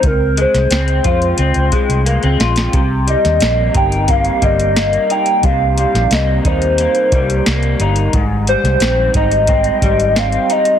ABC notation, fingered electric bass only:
X:1
M:4/4
L:1/16
Q:1/4=89
K:Cphr
V:1 name="Fingered electric bass" clef=bass
D,,3 C,, D,,2 F,,2 D,, D,, z C,,2 D,, B,,,2 | C,,3 E,, B,,,2 G,,,4 G,,,4 z2 | C,,3 B,,, C,,2 E,,3 z C,,2 C,,2 G,,,2 | A,,,3 C,, B,,,2 A,,,4 A,,,4 z2 |]